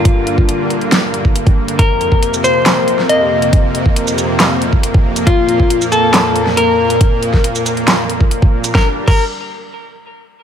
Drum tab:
CC |----------------|----------------|----------------|----------------|
HH |x-x-x-xxx-x-xx-x|x-x-x-x-x-x-x--x|x-x-x-x-x-x-x--x|x-x-x-x-x-x-x--x|
SH |----------------|-----xx---------|-----xx--------x|-----xx---------|
CP |----------------|--------x-------|--------x-------|--------x-------|
SD |--------o-------|--------o--o----|--------o-------|--------o--o----|
BD |o--o-------o-o--|o--o------------|o--o-------o-o--|o--o------------|

CC |----------------|---x------------|
HH |x-x-x-xxx-x-x--x|----------------|
SH |-----xx--------x|----------------|
CP |--------x-------|----------------|
SD |---o----o-------|o---------------|
BD |o--o-------o-o--|o--o------------|